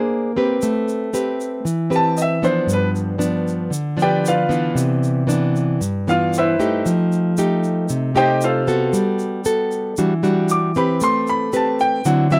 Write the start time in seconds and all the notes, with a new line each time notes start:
Already playing: A#3 D4 G#4 C5
0.36 C4 G4 B4
0.62 A3, shaker
0.89 shaker
1.13 C4 G4 B4, shaker
1.41 shaker
1.65 E3, shaker
1.90 C4 G4 B4, shaker
1.96 A5
2.17 D#5, shaker
2.22 E5
2.42 F3 B3 D4 C5, shaker
2.67 G2, shaker
2.73 B4
2.96 shaker
3.18 F3 B3 D4, shaker
3.48 shaker
3.70 D3, shaker
3.97 F3 B3 D4, shaker
4.02 G4 B4 D5 G5
4.26 F4 B4 D5 F5, shaker
4.49 E3 B3 D4, shaker
4.75 C3, shaker
5.04 shaker
5.27 E3 B3 D4, shaker
5.56 shaker
5.81 G2, shaker
6.07 E3 B3 D4 F4 F5, shaker
6.33 shaker
6.38 E4 B4 C5 E5
6.59 A3 D#4 G4, shaker
6.86 F3, shaker
7.12 shaker
7.37 A3 D#4 G4, shaker
7.64 shaker
7.89 C3, shaker
8.15 A3 D#4 G4 C5 D#5 G5, shaker
8.41 F4 A4 C5 F5, shaker
8.67 B3 F#4 A4, shaker
8.93 G3, shaker
9.19 shaker
9.45 B3 F#4 A4, shaker
9.72 shaker
9.97 E3 G3 D4 F#4, shaker
10.23 G3 D4 F#4, shaker
10.49 D6, shaker
10.75 C4 G4 B4 B5, shaker
11.01 A3 C6, shaker
11.27 B5, shaker
11.53 C4 G4 B4 A5, shaker
11.80 G5, shaker
12.05 D3 F#3 C4 E4 F#5, shaker
12.31 F#3 C4 E4 E5, shaker